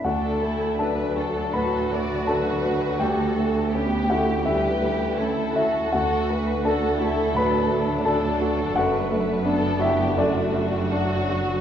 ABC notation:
X:1
M:4/4
L:1/8
Q:1/4=82
K:D
V:1 name="Violin section"
A2 B A A d B2 | A2 G2 B2 A2 | A B A4 A2 | B2 A G F4 |]
V:2 name="Grand piano"
[Ff]2 [Aa]2 [Bb]2 [Aa]2 | [Gg]3 [Ff] [Ee]3 e | [Ff]2 [Aa]2 [Bb]2 [Aa]2 | [Ff]3 [Ee] [Dd]3 z |]
V:3 name="Grand piano"
D,, A, D F A,, A, D F | D,, A, C E D,, A, C E | D,, A, D F A,, A, D F | F,, A, D F F,, A, D F |]
V:4 name="Violin section"
D E D2 F4- | F2 G2 G2 E F- | F2 F E D4- | D2 D4 F2 |]
V:5 name="Viola section"
A,2 F,4 F,2 | G, A, B, A, G, G, A,2 | A,4 F, F,3 | A, A, B,2 A, G, F,2 |]
V:6 name="Cello section" clef=bass
D,,8- | D,,8 | D,,8 | F,,8 |]
V:7 name="Double bass section" clef=bass
D,,8- | D,,8 | D,,8 | F,,,8 |]